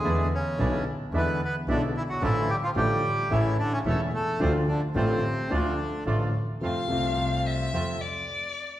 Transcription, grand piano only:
X:1
M:4/4
L:1/8
Q:1/4=109
K:Dm
V:1 name="Grand piano" clef=bass
[E,,D,E,^G,=B,E] z [=B,,,=B,,D,G,B,E] z [E,,D,E,G,B,E] z [B,,,B,,D,G,B,E] z | [A,,,A,,D,F,A,F] z [A,,,A,,D,F,A,F] z [A,,,A,,^C,E,A,E] z [E,,,E,,C,E,A,E] z | [D,,D,F,A,F] z [A,,,A,,D,F,A,F] z [D,,D,F,A,F] z [A,,,A,,D,F,A,F] z | [K:F] [F,,C,F,A,F] [C,,C,F,A,F]3 [F,,C,F,A,F] z3 |]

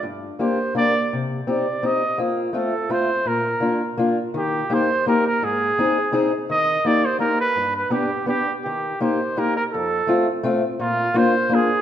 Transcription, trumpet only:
X:1
M:3/4
L:1/16
Q:1/4=167
K:Bb
V:1 name="Trumpet"
z4 c4 d4 | z4 d4 e4 | z4 A4 c4 | B8 z4 |
[K:Eb] G4 c4 B2 B2 | A8- A2 z2 | e4 d2 c2 B2 _c2- | _c2 =B2 G4 G3 z |
G4 c4 B2 B2 | =A6- A z4 z | F4 c4 A4 |]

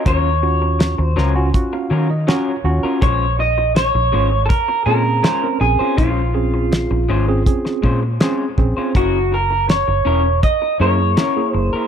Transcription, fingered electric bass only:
X:1
M:4/4
L:1/16
Q:1/4=81
K:Bbm
V:1 name="Fingered electric bass" clef=bass
E,,4- E,, E,, D,,2 z2 E,2 z2 E,, z | B,,,4- B,,, B,,, A,,,2 z2 B,,2 z2 B,,, z | B,,,4- B,,, B,,, A,,,2 z2 B,,2 z2 B,,, z | G,,,4- G,,, G,,, _F,,,2 z2 G,,2 z2 G,,, z |]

